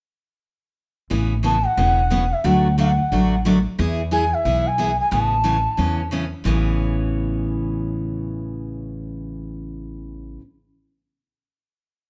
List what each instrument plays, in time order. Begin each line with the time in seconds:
1.10 upright bass A1, steel-string acoustic guitar C#3 E3 B3 C#4
1.43 steel-string acoustic guitar C#3 E3 B3 C#4, bansuri A5
1.66 bansuri F#5
1.77 upright bass E1, steel-string acoustic guitar C#3 E3 B3 C#4
2.10 steel-string acoustic guitar C#3 E3 B3 C#4
2.33 bansuri E5
2.44 upright bass D2, steel-string acoustic guitar D3 F#3 A3 D4 F#4, bansuri F#5
2.78 steel-string acoustic guitar D3 F#3 A3 D4 F#4, bansuri F#5
3.12 upright bass A1, steel-string acoustic guitar D3 F#3 A3 D4 F#4
3.45 steel-string acoustic guitar D3 F#3 A3 D4 F#4
3.79 upright bass E2, steel-string acoustic guitar E3 B3 E4 G#4
4.11 steel-string acoustic guitar E3 B3 E4 G#4, bansuri G#5
4.34 bansuri E5
4.45 upright bass B1, steel-string acoustic guitar E3 B3 E4 G#4
4.67 bansuri G#5
4.78 steel-string acoustic guitar E3 B3 E4 G#4
5.00 bansuri G#5
5.11 upright bass A1, steel-string acoustic guitar C#3 E3 B3 C#4, bansuri A5
5.44 steel-string acoustic guitar C#3 E3 B3 C#4
5.77 upright bass E2, steel-string acoustic guitar C#3 E3 B3 C#4
6.11 steel-string acoustic guitar C#3 E3 B3 C#4
6.44 upright bass A1, steel-string acoustic guitar A2 C#3 E3 B3 C#4